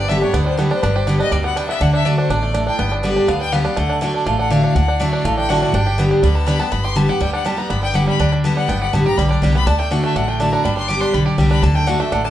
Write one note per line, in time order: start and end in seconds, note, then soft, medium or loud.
0.00 0.23 G1 medium
0.00 0.32 G2 loud
0.00 0.46 G3 medium
0.00 0.19 B3 medium
0.00 0.21 D4 medium
0.00 0.10 D5 loud
0.09 0.44 D3 medium
0.09 0.21 D3 medium
0.09 0.22 G3 medium
0.09 0.22 B3 loud
0.09 0.20 G4 loud
0.09 0.21 E5 medium
0.21 0.34 B3 medium
0.21 0.71 D4 medium
0.21 0.33 G4 medium
0.21 0.35 C#5 medium
0.33 0.72 D2 medium
0.33 0.56 D3 loud
0.33 0.57 B3 medium
0.33 0.45 D5 loud
0.46 0.80 G3 medium
0.46 0.60 C5 medium
0.57 0.70 D3 loud
0.57 0.70 G3 medium
0.57 0.93 B3 medium
0.57 0.71 B3 medium
0.57 0.69 G4 medium
0.57 0.70 A4 medium
0.70 0.83 B3 soft
0.70 0.83 D4 medium
0.70 0.82 G4 medium
0.70 0.84 C5 loud
0.82 1.21 G1 medium
0.82 1.30 G2 loud
0.82 1.19 D4 medium
0.82 0.96 B4 medium
0.95 1.30 G4 medium
0.95 1.09 C5 medium
1.07 1.19 D3 medium
1.07 1.20 G3 medium
1.07 1.42 B3 medium
1.07 1.20 B3 loud
1.07 1.19 G4 medium
1.07 1.19 D5 medium
1.19 1.33 B3 medium
1.19 1.56 D4 medium
1.19 1.32 G4 medium
1.19 1.33 D#5 loud
1.31 1.70 D2 medium
1.31 1.55 B2 medium
1.31 1.67 G3 medium
1.31 1.44 D5 medium
1.44 1.68 B3 medium
1.44 1.58 F#5 loud
1.56 1.80 C3 medium
1.56 1.81 D4 medium
1.56 1.68 G5 loud
1.69 1.81 B3 medium
1.69 1.83 E5 loud
1.81 2.19 D2 medium
1.81 2.04 D3 loud
1.81 1.93 D4 medium
1.81 1.93 F#5 loud
1.93 2.18 D4 medium
1.93 2.07 E5 loud
2.05 2.29 D3 medium
2.05 2.40 D3 medium
2.05 2.29 A3 medium
2.05 2.30 D4 loud
2.05 2.30 F#4 loud
2.05 2.18 D5 medium
2.18 2.30 D4 medium
2.18 2.32 C5 medium
2.29 2.68 A1 medium
2.29 2.54 B2 medium
2.29 2.54 D4 medium
2.29 2.67 D5 medium
2.43 2.77 A3 medium
2.54 2.78 A2 medium
2.54 2.67 D4 medium
2.67 2.91 D4 medium
2.67 2.91 G5 loud
2.79 3.17 G1 loud
2.79 3.26 G2 medium
2.79 3.14 B3 medium
2.92 3.16 D4 medium
3.03 3.27 D3 medium
3.03 3.38 D3 medium
3.03 3.27 G3 loud
3.03 3.28 B3 loud
3.03 3.28 G4 loud
3.03 3.30 D5 medium
3.16 3.64 D4 medium
3.28 3.67 D2 medium
3.28 3.51 D3 medium
3.28 3.52 B3 medium
3.28 3.41 F5 medium
3.41 3.75 G3 medium
3.41 3.54 G5 loud
3.52 3.65 D3 medium
3.52 3.65 G3 loud
3.52 3.78 B3 medium
3.52 3.66 B3 loud
3.52 3.64 G4 loud
3.52 3.79 F5 medium
3.65 3.78 B3 soft
3.65 3.89 D4 medium
3.65 3.77 G4 medium
3.77 4.16 D2 medium
3.77 4.00 D3 medium
3.77 4.01 A3 medium
3.77 4.04 F#5 loud
3.89 4.14 D4 medium
4.01 4.25 D3 loud
4.01 4.25 A3 medium
4.01 4.26 D4 loud
4.01 4.26 F#4 loud
4.01 4.28 D5 medium
4.14 4.39 D4 medium
4.26 4.65 A1 medium
4.26 4.73 A2 medium
4.26 4.61 A3 medium
4.26 4.38 F5 medium
4.38 4.51 D4 medium
4.38 4.52 F#5 loud
4.50 4.74 D3 medium
4.50 4.75 A3 medium
4.50 4.63 D4 medium
4.50 4.75 D4 loud
4.50 4.75 F#4 loud
4.50 4.76 F5 loud
4.64 4.75 D4 medium
4.75 5.14 D2 medium
4.75 4.98 D3 medium
4.75 4.88 D4 medium
4.75 5.01 F#5 loud
4.88 5.01 D4 medium
5.00 5.23 D3 medium
5.00 5.24 A3 loud
5.00 5.13 D4 medium
5.00 5.24 D4 loud
5.00 5.24 F#4 loud
5.00 5.26 D5 medium
5.13 5.38 D4 medium
5.24 5.63 A1 medium
5.24 5.72 A2 loud
5.24 5.60 A3 medium
5.24 5.37 F5 medium
5.37 5.50 D4 medium
5.37 5.50 G5 loud
5.49 5.73 D3 medium
5.49 5.73 A3 loud
5.49 5.62 D4 medium
5.49 5.74 D4 medium
5.49 5.74 F#4 loud
5.49 5.76 F#5 loud
5.62 5.75 D4 medium
5.73 6.12 G1 loud
5.73 6.21 G2 loud
5.73 6.09 D4 medium
5.73 6.11 G5 loud
5.87 6.21 G4 medium
5.98 6.22 D3 loud
5.98 6.22 G3 medium
5.98 6.33 B3 medium
5.98 6.22 B3 loud
5.98 6.23 G4 loud
6.11 6.45 D4 medium
6.23 6.61 D2 medium
6.23 6.45 D3 loud
6.23 6.58 G3 medium
6.23 6.37 B5 loud
6.35 6.58 B3 medium
6.35 6.48 A5 loud
6.46 6.59 D3 medium
6.46 6.60 G3 loud
6.46 6.60 B3 loud
6.46 6.72 D4 medium
6.46 6.58 G4 loud
6.46 6.61 B5 loud
6.59 6.71 B3 medium
6.59 6.73 B3 medium
6.59 6.71 G4 medium
6.59 6.73 A5 loud
6.72 7.10 G1 medium
6.72 7.19 G2 medium
6.72 6.96 B3 medium
6.72 6.86 B5 loud
6.84 7.09 G4 medium
6.84 6.98 C6 loud
6.96 7.08 D3 medium
6.96 7.09 G3 medium
6.96 7.58 B3 medium
6.96 7.09 B3 medium
6.96 7.07 G4 medium
6.96 7.11 A5 medium
7.08 7.22 B3 soft
7.08 7.21 G4 medium
7.08 7.95 G4 medium
7.08 7.23 F#5 loud
7.20 7.59 D2 medium
7.20 7.43 D3 medium
7.20 7.45 G3 medium
7.20 7.33 G5 loud
7.33 8.20 D4 medium
7.33 7.48 F#5 loud
7.44 7.57 D3 medium
7.44 7.58 G3 medium
7.44 7.80 G3 medium
7.44 7.58 B3 medium
7.44 7.56 G4 loud
7.44 7.60 A5 medium
7.57 7.69 B3 medium
7.57 7.71 B3 soft
7.57 7.69 G4 medium
7.57 7.72 A#5 loud
7.70 8.08 G1 medium
7.70 8.17 G2 medium
7.70 8.05 B3 medium
7.70 7.82 B5 loud
7.83 8.06 G3 medium
7.83 7.97 G5 loud
7.94 8.18 D3 medium
7.94 8.18 G3 medium
7.94 8.19 B3 loud
7.94 8.30 G4 medium
7.94 8.19 G4 loud
7.94 8.07 F#5 medium
8.08 8.31 G3 medium
8.08 8.31 B5 loud
8.19 8.58 D2 medium
8.19 8.43 D3 loud
8.19 8.57 D4 medium
8.32 8.66 G3 medium
8.44 8.67 D3 medium
8.44 8.68 G3 loud
8.44 8.68 B3 medium
8.44 8.69 G4 loud
8.44 8.56 A5 medium
8.57 9.30 D4 medium
8.57 8.70 F#5 loud
8.69 8.88 G1 medium
8.69 9.16 G2 medium
8.69 8.92 B3 medium
8.69 8.81 G5 loud
8.81 9.05 G4 medium
8.81 8.95 F#5 loud
8.93 9.14 A1 medium
8.93 9.05 D3 medium
8.93 9.06 G3 loud
8.93 9.28 B3 medium
8.93 9.06 B3 medium
8.93 9.05 G4 loud
8.93 9.06 A5 medium
9.06 9.19 B3 medium
9.06 9.40 G4 medium
9.06 9.18 G4 medium
9.06 9.19 A#5 loud
9.17 9.39 B1 medium
9.17 9.41 D3 loud
9.17 9.42 G3 medium
9.17 9.30 B5 loud
9.30 9.67 D4 medium
9.30 9.44 D5 medium
9.42 9.63 C2 medium
9.42 9.54 D3 medium
9.42 9.55 G3 medium
9.42 9.67 G3 medium
9.42 9.55 B3 medium
9.42 9.53 G4 loud
9.42 9.54 G5 loud
9.54 9.67 B3 medium
9.54 9.68 B3 medium
9.54 9.66 G4 medium
9.54 9.68 B5 loud
9.66 10.05 D2 medium
9.66 9.89 D3 loud
9.66 9.91 D4 medium
9.66 9.80 A5 loud
9.79 10.02 A3 medium
9.79 9.93 G5 loud
9.91 10.14 D3 medium
9.91 10.15 A3 medium
9.91 10.15 D4 medium
9.91 10.16 F#4 loud
9.91 10.03 F#5 medium
10.04 10.27 A3 medium
10.04 10.18 E5 loud
10.16 10.54 A1 medium
10.16 10.63 A2 medium
10.16 10.40 D4 medium
10.16 10.30 F#5 medium
10.28 10.63 A3 medium
10.28 10.41 G5 medium
10.40 10.64 D3 medium
10.40 10.64 A3 medium
10.40 10.53 D4 medium
10.40 10.64 D4 loud
10.40 10.65 F#4 medium
10.40 10.54 A5 medium
10.53 10.77 D4 medium
10.53 10.65 A#5 loud
10.64 11.03 G1 medium
10.64 11.12 G2 medium
10.64 10.88 G3 medium
10.64 10.76 B5 loud
10.77 11.01 D4 medium
10.77 10.89 C6 loud
10.88 11.12 D3 medium
10.88 11.12 G3 medium
10.88 11.13 G3 medium
10.88 11.13 B3 loud
10.88 11.14 G4 loud
10.88 11.02 D6 loud
11.00 11.50 D4 medium
11.00 11.15 C6 loud
11.13 11.35 B1 medium
11.13 11.37 D3 medium
11.13 11.37 G3 medium
11.13 11.25 B5 medium
11.26 11.60 G4 medium
11.26 11.39 D5 medium
11.38 11.59 C2 medium
11.38 11.62 D3 medium
11.38 11.63 G3 medium
11.38 11.62 G3 medium
11.38 11.63 B3 loud
11.38 11.63 G4 loud
11.38 11.50 G5 loud
11.51 11.63 D4 medium
11.51 11.64 B5 loud
11.63 12.01 D2 medium
11.63 11.85 D3 loud
11.63 11.87 D4 medium
11.63 11.76 A5 loud
11.75 11.99 A3 medium
11.75 11.89 G5 loud
11.87 11.99 D3 medium
11.87 12.00 A3 loud
11.87 12.12 D4 medium
11.87 12.00 D4 loud
11.87 11.99 F#4 loud
11.87 12.01 F#5 medium
12.00 12.30 A3 medium
12.00 12.13 D4 soft
12.00 12.12 F#4 medium
12.00 12.14 E5 loud
12.12 12.30 A1 medium
12.12 12.30 A2 medium
12.12 12.25 D4 medium
12.12 12.23 F#5 medium
12.24 12.30 D4 medium
12.24 12.30 A5 loud